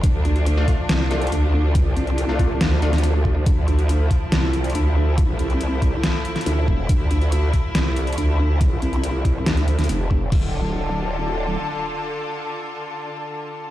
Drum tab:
CC |--------------------------------|--------------------------------|--------------------------------|--------------------------------|
HH |x---x-x-x---x---x---x-xxx-------|x---x-x-x---x---x---x-xxx-------|x---x-x-x---x---x---x-xxx-------|x---x-x-x---x---x---x-xxx-------|
SD |----------------o---------------|----------------o-----o---------|----------------o---------------|----------------o-----o---------|
BD |o-----------o-------------------|o-----------o---------------o---|o-----------o-------------------|o-----------o---------------o---|

CC |--------------------------------|--------------------------------|x-------------------------------|--------------------------------|
HH |x---x-x-x---x---x---x-xxx-------|x---x-x-x---x---x-x-x-xxx-------|--------------------------------|--------------------------------|
SD |----------------o---------------|----------------o-----o---------|--------------------------------|--------------------------------|
BD |o-----------o-------------------|o-----------o---------------o---|o-------------------------------|--------------------------------|